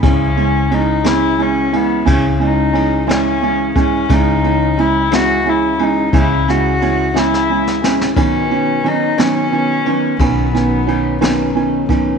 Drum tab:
RD |x-x-x-x-x-x-|x-x-x-x-x-x-|x-x-x-x-x-x-|x-x-x-------|
SD |------o-----|------o-----|------o-----|--o---oo-ooo|
BD |o-----------|o---------o-|o-----------|o-----------|

RD |x-x-x-x-x-x-|x-x-x-x-x-x-|
SD |------o-----|--o---o-----|
BD |o-----------|o---------o-|